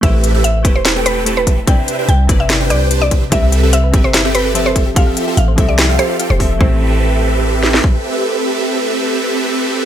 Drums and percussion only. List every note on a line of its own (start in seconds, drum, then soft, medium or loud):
0.03 kick loud
0.03 closed hi-hat medium
0.24 closed hi-hat medium
0.44 closed hi-hat medium
0.65 kick loud
0.65 closed hi-hat medium
0.85 snare loud
0.85 closed hi-hat medium
1.06 closed hi-hat medium
1.26 closed hi-hat medium
1.47 kick medium
1.47 closed hi-hat medium
1.67 kick loud
1.67 closed hi-hat medium
1.88 closed hi-hat medium
2.09 closed hi-hat medium
2.29 kick loud
2.29 closed hi-hat medium
2.50 cross-stick medium
2.50 snare loud
2.50 closed hi-hat medium
2.70 cross-stick medium
2.70 closed hi-hat medium
2.91 closed hi-hat medium
3.11 kick medium
3.11 closed hi-hat medium
3.32 kick loud
3.32 closed hi-hat medium
3.52 closed hi-hat medium
3.73 closed hi-hat medium
3.94 kick loud
3.94 closed hi-hat medium
4.14 snare loud
4.14 closed hi-hat medium
4.35 closed hi-hat medium
4.55 closed hi-hat medium
4.76 kick medium
4.76 closed hi-hat medium
4.96 kick loud
4.96 closed hi-hat medium
5.17 closed hi-hat medium
5.37 closed hi-hat medium
5.58 kick loud
5.58 closed hi-hat medium
5.78 cross-stick medium
5.78 snare loud
5.78 closed hi-hat medium
5.99 cross-stick medium
5.99 closed hi-hat medium
6.20 closed hi-hat medium
6.40 kick medium
6.40 open hi-hat medium
6.61 kick loud
7.63 snare medium
7.74 snare medium
7.84 kick medium